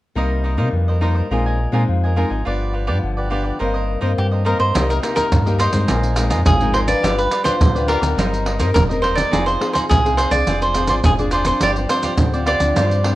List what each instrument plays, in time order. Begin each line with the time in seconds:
0.16 sub bass C2, nylon-string guitar C3 G3 A#3 D#4, cavaquinho D#4 A#4 C5 D#5
0.44 cavaquinho D#4 A#4 C5 D#5
0.57 sub bass C3, nylon-string guitar G3 A#3 D#4, cavaquinho D#4 A#4 C5 D#5
0.73 sub bass F2, nylon-string guitar G2
0.88 cavaquinho A#4 C5 D#5
1.01 nylon-string guitar G3 A#3 D#4, cavaquinho D#4 A#4 C5 D#5
1.15 cavaquinho A#4 C5 D#5
1.30 sub bass A#1, nylon-string guitar A#2 G#3 C4 D#4, cavaquinho F4 A#4 D#5 G#5
1.46 cavaquinho A#4 D#5 G#5
1.72 sub bass A#2, nylon-string guitar G#3 C4 D#4, cavaquinho F4 A#4 D#5 G#5
1.88 sub bass F2, nylon-string guitar F3
2.04 cavaquinho A#4 D#5 G#5
2.16 nylon-string guitar G#3 C4 D#4, cavaquinho F4 A#4 D#5 G#5
2.30 sub bass G#1, cavaquinho A#4 D#5 G#5
2.45 sub bass G1, nylon-string guitar G2 F3 B3 D4, cavaquinho F4 G4 B4 D5
2.73 cavaquinho F4 G4 B4 D5
2.87 sub bass G2, nylon-string guitar F3 B3 D4, cavaquinho F4 G4 B4 D5
3.03 sub bass G1, nylon-string guitar D3
3.17 cavaquinho G4 B4 D5
3.30 nylon-string guitar F3 B3 D4, cavaquinho F4 G4 B4 D5
3.43 cavaquinho G4 B4 D5
3.59 sub bass G1, nylon-string guitar G2 D#3 A#3 C4, cavaquinho D#4 A#4 C5 D#5
3.74 cavaquinho A#4 C5 D#5
4.01 sub bass G2, nylon-string guitar D#3 A#3 C4, cavaquinho D#4 A#4 C5 D#5
4.18 nylon-string guitar G2, sub bass G2, cavaquinho G4
4.32 cavaquinho A#4 C5 D#5
4.44 nylon-string guitar D#3 A#3 C4, cavaquinho D#4 A#4 C5 D#5
4.59 sub bass G2, cavaquinho A#4 C5 D#5
4.74 sub bass C2, nylon-string guitar C3 A#3 D#4 G4, cavaquinho D#4 A#4 C5 D#5, pandeiro, maracas, surdo
4.89 cavaquinho A#4 C5 D#5, pandeiro, maracas
5.02 nylon-string guitar A#3 D#4 G4, cavaquinho D#4 A#4 C5 D#5, pandeiro, maracas
5.15 cavaquinho D#4 A#4 C5 D#5, pandeiro, maracas, surdo
5.32 nylon-string guitar G2, sub bass G2, pandeiro, maracas, surdo
5.46 nylon-string guitar A#3 D#4 G4, cavaquinho A#4 C5 D#5, pandeiro, maracas
5.58 cavaquinho D#4 A#4 C5 D#5, pandeiro, maracas
5.73 sub bass G2, nylon-string guitar G#3 C4 D#4, cavaquinho A#4 C5 D#5, pandeiro, maracas, surdo
5.88 sub bass A#1, nylon-string guitar A#2, cavaquinho F4 A#4 D#5 G#5, pandeiro, maracas, surdo
6.03 pandeiro, maracas
6.16 nylon-string guitar G#3 C4 D#4, cavaquinho F4 A#4 D#5 G#5, pandeiro, maracas
6.30 sub bass F2, cavaquinho F4 A#4 D#5 G#5, pandeiro, maracas, surdo
6.46 sub bass G#1, nylon-string guitar F3, cavaquinho G#4, pandeiro, maracas, surdo
6.60 nylon-string guitar G#3 C4 D#4, cavaquinho A#4 D#5 G#5, pandeiro, maracas
6.73 cavaquinho F4 A#4 C5 D#5 G#5, pandeiro
6.88 nylon-string guitar D4 F4 B4, cavaquinho D5, pandeiro, maracas, surdo
7.02 sub bass G1, nylon-string guitar G3, cavaquinho F4 G4 B4 D5, pandeiro, maracas, surdo
7.18 cavaquinho G4 B4 D5, pandeiro, maracas
7.31 cavaquinho F4 G4 B4 D5, pandeiro, maracas
7.44 nylon-string guitar D4 F4 B4, cavaquinho F4 G4 B4 C5 D5, pandeiro, maracas, surdo
7.60 sub bass D2, nylon-string guitar D3, pandeiro, maracas, surdo
7.75 nylon-string guitar D4 F4 B4, cavaquinho G4 B4 D5, pandeiro, maracas
7.88 cavaquinho F4 G4 A#4 B4 D5, pandeiro
8.01 sub bass D2, nylon-string guitar C4 D#4 A#4, cavaquinho G4 B4 D5, pandeiro, maracas, surdo
8.17 sub bass G1, nylon-string guitar G3, cavaquinho D#4 A#4 C5 D#5, pandeiro, maracas, surdo
8.34 pandeiro, maracas
8.45 cavaquinho D#4 A#4 C5 D#5, pandeiro
8.59 sub bass G2, nylon-string guitar C4 D#4 A#4, cavaquinho D#4 A#4 C5 D#5, pandeiro, maracas, surdo
8.74 sub bass E1, nylon-string guitar G3, cavaquinho A#4, pandeiro, maracas, surdo
8.89 nylon-string guitar C4 D#4 A#4, cavaquinho A#4 C5 D#5, pandeiro, maracas
9.02 cavaquinho D#4 A#4 C5 D#5, pandeiro
9.15 cavaquinho D5, pandeiro, maracas, surdo
9.31 sub bass F1, nylon-string guitar F3 C4 D#4 G#4, cavaquinho D#4 G#4 C5 F5, pandeiro, maracas, surdo
9.46 cavaquinho G#4 C5 F5, pandeiro, maracas
9.60 nylon-string guitar C4 D#4 G#4, cavaquinho D#4 G#4 C5 F5, pandeiro
9.73 cavaquinho D#4 G#4 C5 F5, pandeiro, maracas, surdo
9.89 sub bass C2, nylon-string guitar C3, cavaquinho G#4, pandeiro, maracas, surdo
10.05 nylon-string guitar C4 D#4 G#4, cavaquinho G#4 C5 F5, pandeiro, maracas
10.17 cavaquinho D#4 G#4 C5 F5, pandeiro, maracas
10.31 sub bass C2, nylon-string guitar C4 D4 G#4, cavaquinho G#4 C5 D5 F5, pandeiro, maracas, surdo
10.47 sub bass F1, nylon-string guitar F3, cavaquinho F4 G#4 C5 D5, pandeiro, maracas, surdo
10.62 cavaquinho C5, pandeiro, maracas
10.75 nylon-string guitar C4 D4 G#4, cavaquinho F4 G#4 C5 D5, pandeiro, maracas, surdo
10.88 sub bass G#1, cavaquinho F4 G#4 C5 D5, pandeiro, maracas, surdo
11.04 sub bass F1, nylon-string guitar F3, cavaquinho G#4, pandeiro, maracas, surdo
11.18 nylon-string guitar C4 D4 G#4, cavaquinho G#4 C5 D5, pandeiro, maracas
11.31 cavaquinho F4 G#4 C5 D5, pandeiro, maracas
11.45 nylon-string guitar F3 C4 D4, cavaquinho C5, pandeiro, maracas, surdo
11.61 sub bass G1, nylon-string guitar G2, cavaquinho F4 G4 C5 D5, pandeiro, maracas, surdo
11.76 cavaquinho G4 C5 D5, pandeiro, maracas
11.89 nylon-string guitar F3 C4 D4, cavaquinho F4 G4 C5 D5, pandeiro, maracas
12.03 cavaquinho F4 G4 C5 D5, pandeiro, maracas, surdo
12.18 sub bass D2, nylon-string guitar D3, pandeiro, maracas, surdo
12.33 nylon-string guitar F3 C4 D4, cavaquinho G4 C5 D5, pandeiro, maracas
12.46 cavaquinho F4 G4 C5 D5, pandeiro
12.60 sub bass D2, nylon-string guitar F3 C4 D4, cavaquinho G4 C5 D5, pandeiro, maracas, surdo
12.76 nylon-string guitar G2, sub bass G2, cavaquinho F4 G4 C5 D5, pandeiro, maracas, surdo
12.91 pandeiro, maracas
13.04 nylon-string guitar F3 C4 D4, cavaquinho F4 G4 C5 D5, pandeiro